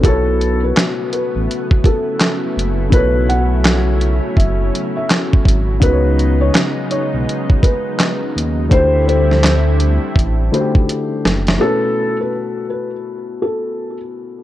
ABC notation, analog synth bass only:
X:1
M:4/4
L:1/16
Q:"Swing 16ths" 1/4=83
K:Dlyd
V:1 name="Analog synth bass" clef=bass
B,,,4 z3 A,,, z6 F,,,2 | B,,,6- B,,, z F,,,2 z4 G,,,2 | C,,4 z3 B,,, z6 ^D,,2 | D,,6- D,, z A,,,2 z4 F,,,2 |
z16 |]